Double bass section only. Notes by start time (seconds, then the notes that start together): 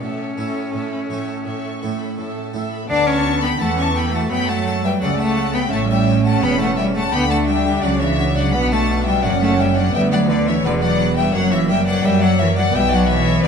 2.90 D2
3.60 E2
4.31 F#2
5.02 C#2
5.72 A1
6.42 E1
7.13 D2
7.83 C#2
8.54 B1
9.24 F#1
9.93 D2
10.63 E1
11.34 F#1
12.04 F#2
12.74 B1
13.44 C#2